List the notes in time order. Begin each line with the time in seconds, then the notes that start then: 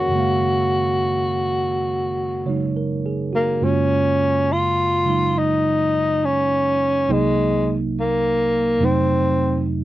Already playing: D#3 G#3 A#3 C#4 F#4 G#4 A#4 C#5 F5
0.08 F#2 C#3
0.14 G#3 A#3
0.19 F5
2.46 C#3 F#3 G#3 D#4 C#5
2.77 A#4
3.06 G#4
3.33 A#3 F#4
3.62 F#2 C#3 G#3 A#3 C#4 F4
4.52 F4
5.05 C#3 F#3 G#3 D#4
5.38 D#4
6.25 C#4
7.09 C2 C3 F#3 G#3 A#3 D#4
8.00 A#3
8.79 F2 C3 F#3 A3
8.83 C4 D#4